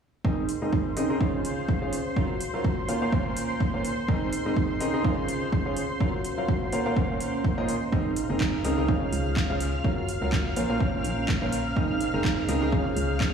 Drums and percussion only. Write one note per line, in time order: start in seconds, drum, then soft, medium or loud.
0.25 kick loud
0.49 open hi-hat loud
0.73 kick loud
0.97 open hi-hat loud
1.21 kick loud
1.45 open hi-hat loud
1.69 kick loud
1.93 open hi-hat loud
2.16 kick loud
2.41 open hi-hat loud
2.64 kick loud
2.89 open hi-hat loud
3.12 kick loud
3.37 open hi-hat loud
3.60 kick loud
3.85 open hi-hat loud
4.08 kick loud
4.33 open hi-hat loud
4.56 kick loud
4.81 open hi-hat loud
5.04 kick loud
5.29 open hi-hat loud
5.52 kick loud
5.76 open hi-hat loud
6.00 kick loud
6.25 open hi-hat loud
6.48 kick loud
6.72 open hi-hat loud
6.96 kick loud
7.20 open hi-hat loud
7.44 kick loud
7.69 open hi-hat loud
7.92 kick loud
8.16 open hi-hat loud
8.40 kick loud
8.40 clap loud
8.64 open hi-hat loud
8.88 kick loud
9.13 open hi-hat loud
9.36 kick loud
9.36 clap loud
9.60 open hi-hat loud
9.84 kick loud
10.09 open hi-hat loud
10.32 kick loud
10.32 clap loud
10.56 open hi-hat loud
10.80 kick loud
11.04 open hi-hat loud
11.28 kick loud
11.28 clap loud
11.52 open hi-hat loud
11.76 kick loud
12.01 open hi-hat medium
12.24 kick loud
12.24 clap loud
12.49 open hi-hat loud
12.72 kick loud
12.97 open hi-hat loud
13.20 kick loud
13.20 clap loud